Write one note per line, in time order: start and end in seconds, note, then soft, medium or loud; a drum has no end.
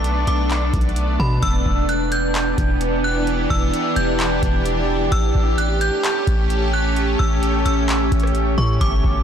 0.00 0.26 B1 loud
0.00 1.39 A3 medium
0.00 1.39 B3 medium
0.00 1.39 D4 medium
0.00 0.25 D6 medium
0.04 closed hi-hat medium
0.27 0.72 B1 loud
0.27 1.16 D6 medium
0.27 closed hi-hat medium
0.50 clap loud
0.50 closed hi-hat medium
0.74 1.18 B1 loud
0.74 kick loud
0.74 closed hi-hat medium
0.81 closed hi-hat medium
0.89 closed hi-hat soft
0.96 closed hi-hat medium
1.19 1.42 B2 loud
1.19 1.42 B5 medium
1.19 kick medium
1.42 1.65 E1 loud
1.42 5.08 E3 medium
1.42 5.08 B3 medium
1.42 5.08 D4 medium
1.42 8.77 G4 medium
1.42 1.86 E6 loud
1.42 kick loud
1.42 closed hi-hat medium
1.66 2.54 E1 loud
1.66 kick medium
1.89 2.11 F#6 medium
1.89 closed hi-hat medium
2.12 3.00 G6 medium
2.12 closed hi-hat medium
2.35 clap loud
2.35 closed hi-hat medium
2.58 3.47 E1 loud
2.58 kick loud
2.58 closed hi-hat medium
2.81 closed hi-hat medium
3.04 3.26 F#6 medium
3.27 closed hi-hat medium
3.50 3.73 E1 loud
3.50 3.94 E6 medium
3.50 kick loud
3.74 closed hi-hat medium
3.96 4.41 E1 loud
3.96 4.62 G6 medium
3.96 closed hi-hat medium
4.20 clap loud
4.20 closed hi-hat medium
4.43 5.09 E1 loud
4.43 kick loud
4.43 closed hi-hat medium
4.65 closed hi-hat medium
5.12 5.34 A1 loud
5.12 8.77 A3 medium
5.12 8.78 C#4 medium
5.12 5.55 E6 loud
5.12 kick loud
5.12 closed hi-hat medium
5.35 5.90 A1 loud
5.35 kick medium
5.58 5.80 F#6 medium
5.58 closed hi-hat medium
5.81 6.69 G6 medium
5.81 closed hi-hat medium
6.04 clap loud
6.04 closed hi-hat medium
6.27 7.16 A1 loud
6.27 kick loud
6.27 closed hi-hat medium
6.50 closed hi-hat medium
6.74 6.95 F#6 medium
6.96 closed hi-hat medium
7.19 7.64 A1 loud
7.19 7.63 E6 medium
7.19 kick medium
7.43 closed hi-hat medium
7.66 8.10 A1 loud
7.66 8.54 E6 medium
7.66 closed hi-hat medium
7.89 clap loud
7.89 closed hi-hat medium
8.12 8.56 A1 loud
8.12 kick loud
8.12 closed hi-hat medium
8.20 cross-stick loud
8.20 closed hi-hat medium
8.27 closed hi-hat soft
8.35 closed hi-hat medium
8.58 8.80 A2 loud
8.58 8.80 C#6 medium
8.58 kick loud
8.81 9.03 G1 loud
8.81 9.23 G3 medium
8.81 9.23 B3 medium
8.81 9.23 F#4 medium
8.81 9.23 D6 loud
8.81 kick loud
8.81 closed hi-hat medium
9.04 9.23 G1 loud
9.04 kick medium